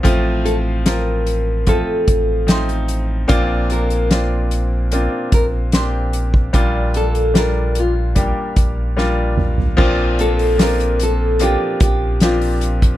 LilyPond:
<<
  \new Staff \with { instrumentName = "Nylon-string guitar" } { \time 4/4 \key bes \major \tempo 4 = 74 r8 a'8 bes'4 a'4 c''8. r16 | r8 bes'8 c''4 r8 bes'8 c''4 | r8 a'8 bes'8 f'2 r8 | r8 a'8 bes'8 a'8 g'8 g'8 f'8. r16 | }
  \new Staff \with { instrumentName = "Grand piano" } { \time 4/4 \key bes \major <f a c' f'>4 <f c' f'>4 <f a c' f'>4 <f a c' ees'>4 | <bes c' d' f'>4 <bes c' d' f'>4 <bes c' d' f'>4 <bes c' d' g'>4 | <g bes d' f'>4 <g bes d' f'>4 <g bes d' g'>4 <g bes d' f'>4 | <f bes c' d' f'>4 <f bes c' d' f'>4 <f bes c' d' f'>4 <f bes c' d' g'>4 | }
  \new Staff \with { instrumentName = "Grand piano" } { \clef bass \time 4/4 \key bes \major a,4. r2 r8 | <bes, f>4. r2 r8 | bes,4. r2 r8 | bes,4. r2 r8 | }
  \new Staff \with { instrumentName = "Sub bass" } { \clef bass \time 4/4 \key bes \major a,,2~ a,,16 r16 a,,4. | bes,,2~ bes,,16 r16 bes,,4. | bes,,2~ bes,,16 r16 bes,,4. | bes,,2~ bes,,16 r16 bes,,4. | }
  \new DrumStaff \with { instrumentName = "Drums" } \drummode { \time 4/4 <hh bd>8 hh8 <hh sn>8 hh8 <hh bd>8 <hh bd>8 <hh sn>16 hh16 hh8 | <hh bd>8 hh16 hh16 <hh sn>8 hh8 hh8 <hh bd>8 <hh sn>8 hh16 bd16 | <hh bd>8 hh16 hh16 <hh sn>8 hh8 <hh bd>8 <hh bd>8 sn8 toml16 tomfh16 | <cymc bd>8 <hho hhp>16 hho16 <hho hhp sn>16 hhp16 <hho hhp>8 <hho hhp>8 <hho hhp bd>8 <hho hhp sn>16 hho16 <hho hhp>16 <hhp bd>16 | }
>>